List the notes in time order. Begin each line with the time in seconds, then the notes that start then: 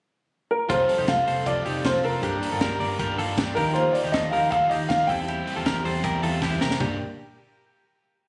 0.51 A#4
0.68 F1 G3 C4 F4 G4 A4 C5, kick, closed hi-hat
0.87 F3 G3 C4 F4 A4, open hi-hat
0.98 F1 D#4 G4
1.08 F1 F4 A4 F5, kick, snare, closed hi-hat
1.25 F1 G3 C4 F4 A4 C5, open hi-hat
1.45 F1 F3 G3 C4 F4 A4 D5, kick, closed hi-hat
1.64 F1 G3 C4 D#4 F4 G4 A4, open hi-hat
1.84 F1 C4 F4 G4 A4 C5, kick, snare, closed hi-hat
1.92 C4 F4 A4
2.04 F1 F4 A4 A#4, open hi-hat
2.21 G1 G3 A#3 D4 G4 A#4, kick, closed hi-hat
2.41 G2 D3 G3 A#3 D4 G4, open hi-hat
2.52 G1 F4 A4
2.61 G1 G4 A#4, kick, snare, closed hi-hat
2.78 G1 G3 A#3 D4 G4 A#4 D5, open hi-hat
2.98 G1 G2 D3 G3 A#3 D4 G4 A#4, kick, closed hi-hat
3.16 G1 G3 A#3 D4 F4 G4 A4, open hi-hat
3.38 G1 D4 G4, kick, snare, closed hi-hat
3.46 G3 A#3 D4 G4
3.55 D#2 D#3 F3 A#3 D#4 F4 G4 A#4, kick, open hi-hat
3.74 A#3 F4 C5, closed hi-hat
3.93 D#3 F3 A#3 D#4 G4 D5, open hi-hat
4.04 D#2 D#4 G4
4.12 D#2 F4 A4 D#5, kick, snare, closed hi-hat
4.31 D#2 F3 A#3 D#4 G4 A#4 F5, open hi-hat
4.51 D#2 D#3 F3 A#3 D#4 F4 G4 A4 F5, kick, closed hi-hat
4.69 D#2 F3 A#3 D#4 G4 D#5, open hi-hat
4.89 D#2 A#3 F4 F5, kick, snare, closed hi-hat
4.99 A#3 D#4 G4
5.07 E2 E3 G3 C4 E4 G4 A4 G5, kick, open hi-hat
5.28 E4 G4, closed hi-hat
5.46 E3 G3 C4 E4, open hi-hat
5.56 E2 F4 A4
5.66 E2 G4 A#4, kick, snare, closed hi-hat
5.83 E2 E3 G3 C4 E4 A4 C5, open hi-hat
6.04 E2 E3 G3 C4 E4 G4 A#4, kick, closed hi-hat
6.21 E2 E3 G3 C4 E4 F4 A4, open hi-hat
6.42 E2 E4 G4, kick, snare
6.51 G3 C4 E4
6.61 F1 G4 A#4, snare
6.71 snare
6.79 G1 G2 D3 G3 A#3 D4 G4, kick, floor tom